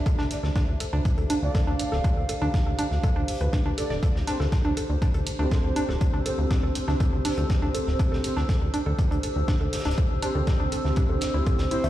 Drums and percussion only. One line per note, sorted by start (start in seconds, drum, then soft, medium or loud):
0.06 kick loud
0.06 closed hi-hat medium
0.18 snare medium
0.31 snare soft
0.31 closed hi-hat loud
0.31 closed hi-hat medium
0.44 snare medium
0.56 kick loud
0.56 snare loud
0.56 closed hi-hat medium
0.80 closed hi-hat medium
1.05 kick loud
1.05 closed hi-hat medium
1.17 closed hi-hat soft
1.30 closed hi-hat loud
1.30 closed hi-hat medium
1.54 kick loud
1.54 snare loud
1.54 closed hi-hat medium
1.79 closed hi-hat medium
1.92 snare medium
2.04 kick loud
2.04 closed hi-hat medium
2.29 closed hi-hat medium
2.29 closed hi-hat loud
2.54 kick loud
2.54 snare loud
2.54 closed hi-hat medium
2.79 closed hi-hat medium
2.91 snare soft
3.03 kick loud
3.03 closed hi-hat medium
3.28 closed hi-hat loud
3.28 open hi-hat medium
3.40 closed hi-hat soft
3.53 kick loud
3.53 snare loud
3.53 closed hi-hat medium
3.78 closed hi-hat medium
3.91 snare soft
4.03 kick loud
4.03 closed hi-hat medium
4.16 snare medium
4.27 snare soft
4.27 closed hi-hat loud
4.27 closed hi-hat medium
4.40 snare medium
4.52 kick loud
4.52 snare loud
4.52 closed hi-hat medium
4.77 closed hi-hat medium
5.02 kick loud
5.02 closed hi-hat medium
5.14 closed hi-hat soft
5.27 closed hi-hat loud
5.27 closed hi-hat medium
5.51 kick loud
5.51 snare loud
5.51 closed hi-hat medium
5.76 closed hi-hat medium
5.89 snare medium
6.01 kick loud
6.01 closed hi-hat medium
6.26 closed hi-hat medium
6.50 kick loud
6.50 snare loud
6.50 closed hi-hat medium
6.75 closed hi-hat medium
6.88 snare soft
7.00 kick loud
7.00 closed hi-hat medium
7.25 closed hi-hat loud
7.25 open hi-hat medium
7.37 closed hi-hat soft
7.49 kick loud
7.49 snare loud
7.49 closed hi-hat medium
7.75 closed hi-hat medium
7.87 snare soft
7.99 kick loud
7.99 closed hi-hat medium
8.13 snare soft
8.24 snare soft
8.24 closed hi-hat loud
8.24 closed hi-hat medium
8.37 snare medium
8.49 kick loud
8.49 snare loud
8.49 closed hi-hat medium
8.74 closed hi-hat medium
8.99 kick loud
8.99 closed hi-hat medium
9.12 closed hi-hat soft
9.23 closed hi-hat loud
9.23 closed hi-hat medium
9.48 kick loud
9.48 snare loud
9.48 closed hi-hat medium
9.73 snare medium
9.73 closed hi-hat medium
9.79 snare medium
9.79 closed hi-hat medium
9.85 snare medium
9.85 closed hi-hat medium
9.91 snare medium
9.91 closed hi-hat medium
9.98 kick loud
9.98 closed hi-hat medium
10.22 closed hi-hat medium
10.47 kick loud
10.47 snare loud
10.47 closed hi-hat medium
10.72 closed hi-hat medium
10.85 snare soft
10.96 kick loud
10.96 closed hi-hat medium
11.21 snare loud
11.21 closed hi-hat medium
11.21 closed hi-hat loud
11.46 kick loud
11.46 closed hi-hat medium
11.59 snare loud
11.59 closed hi-hat medium
11.71 closed hi-hat medium
11.84 closed hi-hat medium